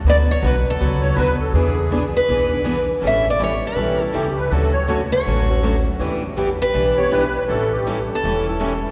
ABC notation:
X:1
M:4/4
L:1/16
Q:"Swing" 1/4=161
K:Edor
V:1 name="Steel-string acoustic guitar"
d2 c2 B2 A6 z4 | z6 B8 z2 | e2 d2 c2 B6 z4 | z6 c8 z2 |
z6 B8 z2 | z6 A8- A2 |]
V:2 name="Accordion"
z8 z2 c2 B2 A2 | ^G4- G z8 z3 | z12 G2 B2 | A2 c3 z8 z3 |
z8 z2 c2 B3 B | A2 G3 z8 z3 |]
V:3 name="Steel-string acoustic guitar"
[D,F,B,FB]2 z2 [D,F,B,FB] z3 [D,F,B,FB]2 [B,FB]2 [D,F,B,FB] z3 | [E,B,D^G]2 z2 [E,B,DG] z3 [E,B,DG]2 [B,DG]2 [E,B,DG] z3 | [E,G,CEA]2 z2 [E,G,CEA] z3 [E,G,CEA]2 [CEA]2 [E,G,CEA] z3 | [D,F,A,CF]2 z2 [D,F,A,CF] z3 [D,F,A,CF]2 [A,CF]2 [D,F,A,CF] z3 |
[E,B,DG]2 z2 [E,B,DG] z3 [E,B,DG]2 [B,DG]2 [E,B,DG] z3 | [E,G,CEA]2 z2 [E,G,CEA] z3 [E,G,CEA]2 [CEA]2 [E,G,CEA] z3 |]
V:4 name="Steel-string acoustic guitar"
[D,F,B,FB]2 z2 [D,F,B,FB] z3 [D,F,B,FB]2 z2 [D,F,B,FB] z3 | [E,B,D^GB]2 z2 [E,B,DGB] z3 [E,B,DGB]2 z2 [E,B,DGB] z3 | [E,G,CEA]2 z2 [E,G,CEA] z3 [E,G,CEA]2 z2 [E,G,CEA] z3 | [D,A,CFA]2 z2 [D,A,CFA] z3 [D,A,CFA]2 z2 [D,A,CFA] z3 |
[E,G,DEB]2 z2 [E,G,DEB] z3 [E,G,DEB]2 z2 [E,G,DEB] z3 | [E,G,CEA]2 z2 [E,G,CEA] z3 [E,G,CEA]2 z2 [E,G,CEA] z3 |]
V:5 name="Upright bass" clef=bass
D,,4 B,,,4 C,,4 D,,4 | E,,8 B,,,8 | A,,,8 B,,,4 C,,4 | D,,8 A,,,8 |
E,,8 B,,,8 | A,,,8 E,,,8 |]